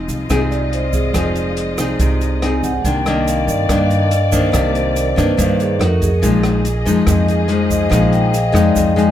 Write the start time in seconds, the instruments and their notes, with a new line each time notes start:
Already playing: nylon-string guitar F3 C4 D#4 G#4, string section G#3 F4 D#5
0.08 upright bass C2, closed hi-hat, shaker
0.30 upright bass C2, nylon-string guitar C3 C4 D#4 G#4, kick, cross-stick, closed hi-hat, shaker
0.50 vibraphone D5, closed hi-hat, shaker
0.73 vibraphone C5, closed hi-hat
0.93 vibraphone G#4, kick, closed hi-hat, shaker
1.14 upright bass F1, nylon-string guitar F3 C4 D#4 G#4, kick, cross-stick, closed hi-hat, shaker
1.35 closed hi-hat, shaker
1.57 closed hi-hat
1.78 upright bass C2, nylon-string guitar C4 D#4 G#4, cross-stick, closed hi-hat, shaker
1.99 upright bass C2, nylon-string guitar C3, kick, closed hi-hat, shaker
2.21 closed hi-hat, shaker
2.42 nylon-string guitar C4 D#4 G#4, vibraphone G#5, cross-stick, closed hi-hat
2.63 vibraphone F#5, kick, closed hi-hat, shaker
2.84 upright bass C2, nylon-string guitar C3 D#3 A#3 D4, string section A#3 D5, vibraphone G5, kick, closed hi-hat, shaker
3.06 nylon-string guitar D#3 A#3 D4, vibraphone D#5, cross-stick, closed hi-hat, shaker
3.28 vibraphone F5, closed hi-hat, shaker
3.47 upright bass G2, vibraphone D5, closed hi-hat, shaker
3.69 upright bass G2, nylon-string guitar G2 D#3 A#3 D4, vibraphone D#5, kick, cross-stick, closed hi-hat, shaker
3.85 vibraphone F5
3.90 closed hi-hat, shaker
3.99 vibraphone D#5
4.11 vibraphone D5, closed hi-hat, shaker
4.32 nylon-string guitar D#3 A#3 D4, vibraphone C5, kick, closed hi-hat, shaker
4.52 upright bass C2, nylon-string guitar C3 D#3 A#3 D4, kick, cross-stick, closed hi-hat, shaker
4.57 vibraphone A#4
4.75 vibraphone C5, closed hi-hat, shaker
4.96 vibraphone D5, closed hi-hat, shaker
5.16 upright bass G2, nylon-string guitar D#3 A#3 D4, vibraphone B4, kick, cross-stick, closed hi-hat, shaker
5.37 nylon-string guitar G2 D#3 A#3 D4, upright bass G2, vibraphone C5, kick, closed hi-hat, shaker
5.60 vibraphone G#4, closed hi-hat, shaker
5.79 upright bass F2, string section A3 F#4 D#5, nylon-string guitar A3 D#4 F#4, vibraphone A#4, cross-stick, closed hi-hat
6.02 vibraphone G#4, kick, closed hi-hat, shaker
6.22 upright bass A#1, nylon-string guitar A#2 F3 G#3 D#4, string section A#3 G#4, kick, closed hi-hat, shaker
6.43 cross-stick, closed hi-hat, shaker
6.65 closed hi-hat, shaker
6.85 upright bass F2, nylon-string guitar F3 G#3 D#4, closed hi-hat, shaker
7.07 upright bass F2, nylon-string guitar F2, vibraphone D#5, kick, cross-stick, closed hi-hat, shaker
7.28 vibraphone G#4, closed hi-hat, shaker
7.48 nylon-string guitar F3 G#3 D#4, vibraphone C5, closed hi-hat
7.70 vibraphone D#5, kick, closed hi-hat, shaker
7.89 upright bass A#1, nylon-string guitar A#2 F3 G#3 D#4, vibraphone F5, kick, cross-stick, closed hi-hat, shaker
8.12 vibraphone G5, closed hi-hat, shaker
8.34 vibraphone F5, closed hi-hat, shaker
8.49 nylon-string guitar F3 G#3, vibraphone D#5
8.53 upright bass F2, nylon-string guitar D#4, cross-stick, closed hi-hat, shaker
8.64 vibraphone D5
8.76 nylon-string guitar F2, upright bass F2, vibraphone D#5, kick, closed hi-hat, shaker
8.96 nylon-string guitar F3 G#3 D#4, vibraphone G#5, closed hi-hat, shaker